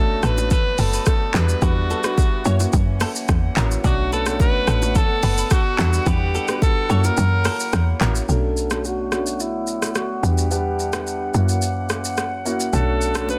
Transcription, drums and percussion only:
0.23 cross-stick loud
0.23 high bongo medium
0.23 shaker medium
0.38 low bongo medium
0.38 shaker medium
0.51 kick loud
0.51 low conga medium
0.51 shaker medium
0.78 open hi-hat medium
0.78 low bongo medium
0.78 shaker medium
0.93 shaker loud
1.06 kick medium
1.06 cross-stick medium
1.06 high bongo medium
1.06 shaker medium
1.34 clap loud
1.34 low conga medium
1.34 shaker medium
1.49 shaker medium
1.62 kick loud
1.62 low conga medium
1.62 shaker medium
1.90 low bongo medium
1.90 shaker medium
2.04 cross-stick loud
2.04 shaker medium
2.18 kick loud
2.18 high bongo medium
2.18 shaker medium
2.45 high bongo medium
2.45 shaker medium
2.60 low bongo medium
2.60 shaker medium
2.73 kick loud
2.73 low conga medium
2.73 shaker medium
3.00 cross-stick medium
3.00 open hi-hat medium
3.00 low bongo medium
3.00 shaker medium
3.16 shaker loud
3.28 kick loud
3.28 cross-stick medium
3.28 high bongo medium
3.28 shaker medium
3.57 clap medium
3.57 low conga medium
3.57 shaker medium
3.71 shaker medium
3.84 kick loud
3.84 low conga medium
3.84 shaker medium
4.12 low bongo medium
4.12 shaker medium
4.26 cross-stick loud
4.26 shaker medium
4.40 kick medium
4.40 high bongo medium
4.40 shaker medium
4.67 cross-stick loud
4.67 high bongo medium
4.67 shaker medium
4.82 low bongo medium
4.82 shaker medium
4.95 kick loud
4.95 low conga medium
4.95 shaker medium
5.23 open hi-hat medium
5.23 low bongo medium
5.23 shaker medium
5.38 shaker medium
5.50 kick loud
5.50 cross-stick medium
5.50 high bongo medium
5.50 shaker medium
5.79 clap medium
5.79 low conga medium
5.79 shaker medium
5.93 shaker medium
6.06 kick loud
6.06 low conga medium
6.06 shaker medium
6.35 low bongo medium
6.35 shaker medium
6.48 cross-stick loud
6.48 shaker medium
6.62 kick medium
6.62 high bongo medium
6.62 shaker medium
6.90 high bongo medium
6.90 shaker medium
7.04 low bongo medium
7.04 shaker medium
7.17 low conga medium
7.17 shaker medium
7.45 cross-stick loud
7.45 open hi-hat medium
7.45 low bongo medium
7.45 shaker medium
7.60 shaker loud
7.73 cross-stick medium
7.73 high bongo medium
7.73 shaker medium
8.01 clap medium
8.01 low conga medium
8.01 shaker medium
8.16 shaker medium
8.29 shaker medium
8.57 shaker soft
8.71 cross-stick medium
8.71 shaker medium
8.85 shaker medium
9.12 cross-stick medium
9.12 shaker medium
9.27 shaker medium
9.40 shaker medium
9.67 shaker soft
9.82 cross-stick medium
9.82 shaker medium
9.95 cross-stick medium
9.95 shaker medium
10.24 shaker medium
10.38 shaker medium
10.51 shaker medium
10.80 shaker soft
10.93 cross-stick loud
10.93 shaker medium
11.07 shaker medium
11.34 shaker medium
11.49 shaker medium
11.62 shaker medium
11.89 cross-stick medium
11.89 shaker medium
12.05 shaker medium
12.17 cross-stick medium
12.17 shaker medium
12.46 shaker medium
12.60 shaker medium
12.73 low conga medium
12.73 shaker medium
13.02 shaker soft
13.15 cross-stick loud
13.15 shaker medium
13.29 high bongo medium
13.29 shaker medium

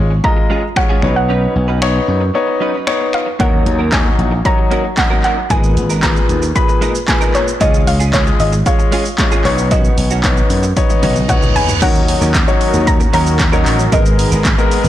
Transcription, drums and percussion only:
0.24 kick loud
0.76 finger snap loud
0.76 kick loud
1.02 finger snap medium
1.82 finger snap loud
2.87 finger snap loud
3.13 finger snap medium
3.40 kick loud
3.40 closed hi-hat medium
3.66 closed hi-hat medium
3.92 kick loud
3.92 snare loud
3.92 clap loud
3.92 closed hi-hat medium
4.19 closed hi-hat soft
4.45 kick loud
4.45 closed hi-hat medium
4.71 closed hi-hat medium
4.97 kick loud
4.97 snare medium
4.97 clap loud
4.97 closed hi-hat medium
5.24 clap medium
5.24 closed hi-hat medium
5.50 kick loud
5.50 closed hi-hat medium
5.50 shaker medium
5.64 shaker medium
5.77 closed hi-hat medium
5.77 shaker medium
5.90 shaker medium
6.03 kick loud
6.03 snare loud
6.03 clap loud
6.03 closed hi-hat medium
6.03 shaker medium
6.16 shaker soft
6.29 closed hi-hat soft
6.29 shaker soft
6.42 shaker medium
6.56 kick loud
6.56 closed hi-hat medium
6.56 shaker medium
6.69 shaker soft
6.82 closed hi-hat medium
6.82 shaker medium
6.95 shaker medium
7.08 kick loud
7.08 snare medium
7.08 clap loud
7.08 closed hi-hat medium
7.08 shaker medium
7.21 shaker medium
7.34 clap medium
7.34 closed hi-hat medium
7.34 shaker medium
7.48 shaker medium
7.61 kick loud
7.61 closed hi-hat medium
7.61 shaker medium
7.74 shaker medium
7.87 open hi-hat medium
7.87 shaker medium
8.00 shaker medium
8.13 kick loud
8.13 snare loud
8.13 clap loud
8.13 closed hi-hat medium
8.13 shaker medium
8.27 shaker soft
8.40 open hi-hat medium
8.40 shaker medium
8.53 shaker medium
8.66 kick loud
8.66 closed hi-hat medium
8.66 shaker medium
8.79 shaker soft
8.92 open hi-hat medium
8.92 shaker medium
9.05 shaker medium
9.18 kick loud
9.18 snare medium
9.18 clap loud
9.18 closed hi-hat medium
9.18 shaker medium
9.32 shaker medium
9.45 clap medium
9.45 open hi-hat medium
9.45 shaker medium
9.58 shaker medium
9.71 kick loud
9.71 closed hi-hat medium
9.71 shaker medium
9.84 shaker medium
9.98 open hi-hat medium
9.98 shaker medium
10.11 shaker medium
10.24 kick loud
10.24 snare loud
10.24 clap loud
10.24 closed hi-hat medium
10.24 shaker medium
10.37 shaker soft
10.50 open hi-hat medium
10.50 shaker soft
10.63 shaker medium
10.77 kick loud
10.77 closed hi-hat medium
10.77 high tom medium
10.77 shaker medium
10.90 high tom medium
10.90 shaker soft
11.03 open hi-hat medium
11.03 mid tom medium
11.03 shaker medium
11.16 mid tom medium
11.16 shaker medium
11.29 kick loud
11.29 closed hi-hat medium
11.29 mid tom medium
11.29 shaker medium
11.42 mid tom medium
11.42 shaker medium
11.56 floor tom loud
11.56 open hi-hat medium
11.56 shaker medium
11.69 floor tom medium
11.69 shaker medium
11.82 kick loud
11.82 closed hi-hat medium
11.82 crash loud
11.82 shaker medium
11.95 shaker medium
12.08 open hi-hat medium
12.08 shaker medium
12.21 shaker medium
12.34 kick loud
12.34 snare loud
12.34 clap loud
12.34 closed hi-hat medium
12.34 shaker medium
12.48 shaker soft
12.61 open hi-hat medium
12.61 shaker soft
12.74 shaker medium
12.87 kick loud
12.87 closed hi-hat medium
12.87 shaker medium
13.00 shaker soft
13.13 open hi-hat medium
13.13 shaker medium
13.27 shaker medium
13.39 kick loud
13.39 snare medium
13.39 clap loud
13.39 closed hi-hat medium
13.39 shaker medium
13.53 shaker medium
13.66 clap medium
13.66 open hi-hat medium
13.66 shaker medium
13.79 shaker medium
13.92 kick loud
13.92 closed hi-hat medium
13.92 shaker medium
14.06 shaker medium
14.19 open hi-hat medium
14.19 shaker medium
14.32 shaker medium
14.45 kick loud
14.45 snare loud
14.45 clap loud
14.45 closed hi-hat medium
14.45 shaker medium
14.58 shaker soft
14.71 open hi-hat medium
14.71 shaker soft
14.84 shaker medium

